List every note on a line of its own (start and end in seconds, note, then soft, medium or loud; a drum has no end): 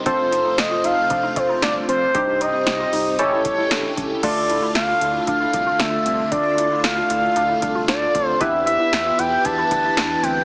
0.00 2.11 C3 medium
0.06 0.42 F1 loud
0.06 2.13 A3 medium
0.06 2.11 C4 medium
0.06 0.26 D4 loud
0.06 2.12 F4 medium
0.06 2.11 F4 medium
0.06 2.11 A4 medium
0.06 0.60 C5 loud
0.06 2.11 C5 medium
0.06 kick loud
0.06 closed hi-hat medium
0.32 0.42 D#4 medium
0.32 closed hi-hat medium
0.45 0.65 D#4 medium
0.58 0.76 F1 loud
0.58 0.86 D#5 loud
0.58 snare loud
0.58 closed hi-hat medium
0.71 0.81 F4 medium
0.84 1.02 F1 loud
0.84 1.05 D#4 medium
0.84 1.38 F5 loud
0.84 closed hi-hat medium
1.10 1.29 F1 loud
1.10 1.20 D4 medium
1.10 kick loud
1.10 closed hi-hat medium
1.23 1.34 D#4 medium
1.36 1.55 F1 medium
1.36 1.46 C4 medium
1.36 1.62 C5 loud
1.36 kick medium
1.36 closed hi-hat medium
1.49 1.60 D#4 medium
1.62 1.81 G1 medium
1.62 1.83 D4 medium
1.62 1.74 D5 loud
1.62 snare loud
1.62 closed hi-hat medium
1.88 2.07 A#1 loud
1.88 2.09 C4 medium
1.88 2.42 C5 loud
1.88 closed hi-hat medium
2.14 2.51 C2 loud
2.14 3.18 C3 medium
2.14 3.18 G3 medium
2.14 3.17 C4 medium
2.14 2.35 D4 loud
2.14 3.18 D#4 medium
2.14 3.17 D#4 medium
2.14 3.17 G4 medium
2.14 3.17 C5 medium
2.14 kick loud
2.14 closed hi-hat medium
2.41 2.51 D#4 medium
2.41 2.66 D#5 loud
2.41 closed hi-hat medium
2.54 2.74 D#4 medium
2.67 2.85 C2 loud
2.67 3.15 D#5 loud
2.67 snare loud
2.67 closed hi-hat medium
2.80 2.90 F4 medium
2.93 3.20 C2 loud
2.93 3.13 D#4 medium
2.93 open hi-hat medium
3.19 3.37 A1 loud
3.19 4.22 C#3 medium
3.19 4.22 A3 medium
3.19 3.29 C#4 medium
3.19 4.21 C#4 medium
3.19 4.21 E4 medium
3.19 4.22 G4 medium
3.19 4.21 G4 medium
3.19 4.21 A4 medium
3.19 3.43 C#5 medium
3.19 closed hi-hat medium
3.32 3.42 E4 medium
3.45 3.63 G1 medium
3.45 3.55 C#4 medium
3.45 3.93 C#5 loud
3.45 kick medium
3.45 closed hi-hat medium
3.58 3.68 E4 medium
3.71 3.89 A1 loud
3.71 3.91 D4 medium
3.71 snare loud
3.71 closed hi-hat medium
3.97 4.16 C#2 loud
3.97 4.18 C#4 medium
3.97 kick loud
3.97 closed hi-hat medium
4.23 4.60 D2 loud
4.23 8.37 D3 medium
4.23 8.37 A3 medium
4.23 4.44 D4 loud
4.23 8.37 D4 medium
4.23 8.37 F4 medium
4.23 8.37 A4 medium
4.23 4.72 D5 loud
4.23 kick loud
4.23 closed hi-hat medium
4.23 crash loud
4.49 4.59 E4 medium
4.49 closed hi-hat medium
4.62 4.83 E4 medium
4.75 4.94 D2 loud
4.75 5.24 F5 loud
4.75 snare loud
4.75 closed hi-hat medium
4.88 4.99 F4 medium
5.01 5.20 D2 loud
5.01 5.22 E4 medium
5.01 closed hi-hat medium
5.27 5.46 D2 loud
5.27 5.38 D4 medium
5.27 5.81 F5 loud
5.27 kick loud
5.27 closed hi-hat medium
5.41 5.51 E4 medium
5.53 5.72 C2 medium
5.53 5.64 D4 medium
5.53 kick medium
5.53 closed hi-hat medium
5.67 5.77 F4 medium
5.79 5.98 D2 loud
5.79 6.00 D4 medium
5.79 6.31 E5 loud
5.79 snare loud
5.79 closed hi-hat medium
6.06 6.24 C2 loud
6.06 6.26 C4 medium
6.06 closed hi-hat medium
6.32 6.68 D2 loud
6.32 6.52 D4 loud
6.32 6.80 D5 loud
6.32 kick loud
6.32 closed hi-hat medium
6.58 6.68 E4 medium
6.58 closed hi-hat medium
6.71 6.91 E4 medium
6.84 7.02 D2 loud
6.84 7.84 F5 loud
6.84 snare loud
6.84 closed hi-hat medium
6.97 7.07 F4 medium
7.10 7.28 D2 loud
7.10 7.31 E4 medium
7.10 closed hi-hat medium
7.36 7.55 D2 loud
7.36 7.46 D4 medium
7.36 closed hi-hat medium
7.49 7.60 E4 medium
7.62 7.90 C2 medium
7.62 7.73 D4 medium
7.62 kick medium
7.62 closed hi-hat medium
7.75 7.86 F4 medium
7.88 8.07 D2 loud
7.88 8.09 D4 medium
7.88 8.27 D5 loud
7.88 snare loud
7.88 closed hi-hat medium
8.15 8.33 D2 medium
8.15 8.35 C4 medium
8.15 kick loud
8.15 closed hi-hat medium
8.27 8.42 C5 loud
8.40 8.77 E2 loud
8.40 10.44 E3 medium
8.40 10.44 B3 medium
8.40 8.61 D4 loud
8.40 10.44 E4 medium
8.40 10.44 G4 loud
8.40 10.44 G4 medium
8.40 10.44 B4 medium
8.40 8.66 E5 loud
8.40 kick loud
8.40 closed hi-hat medium
8.66 8.77 E4 medium
8.66 9.20 E5 loud
8.66 closed hi-hat medium
8.80 9.00 E4 medium
8.93 9.11 E2 loud
8.93 snare loud
8.93 closed hi-hat medium
9.06 9.16 F4 medium
9.18 9.37 E2 loud
9.18 9.39 E4 medium
9.18 9.46 G5 loud
9.18 closed hi-hat medium
9.45 9.63 E2 loud
9.45 9.55 D4 medium
9.45 10.24 A5 loud
9.45 kick medium
9.45 closed hi-hat medium
9.58 9.68 E4 medium
9.71 9.89 D2 medium
9.71 9.81 D4 medium
9.71 kick medium
9.71 closed hi-hat medium
9.84 9.94 E4 medium
9.97 10.16 E2 medium
9.97 10.18 D4 medium
9.97 snare loud
9.97 closed hi-hat medium
10.23 10.41 D2 loud
10.23 10.44 C4 medium
10.23 10.44 G5 loud
10.23 closed hi-hat medium